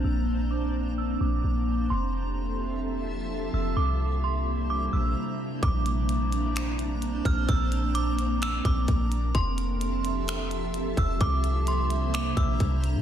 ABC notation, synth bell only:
X:1
M:4/4
L:1/8
Q:1/4=129
K:Bblyd
V:1 name="Synth bell"
e'2 d'2 e' d'3 | c'6- c' e' | d'2 c'2 d' e' z2 | d'6- d' f' |
e'2 d'2 e' d'3 | c'6- c' e' | d'2 c'2 d' e' z2 |]